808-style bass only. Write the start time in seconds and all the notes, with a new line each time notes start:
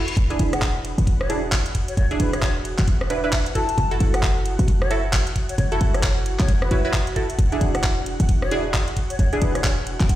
0.17 E1
0.39 E1
0.98 E1
1.97 E1
2.20 E1
2.79 E1
3.78 F#1
4.00 F#1
4.59 F#1
5.58 F#1
5.81 F#1
6.40 F#1
6.71 F#1
7.39 E1
7.61 E1
8.20 E1
9.19 E1
9.42 E1
10.00 E1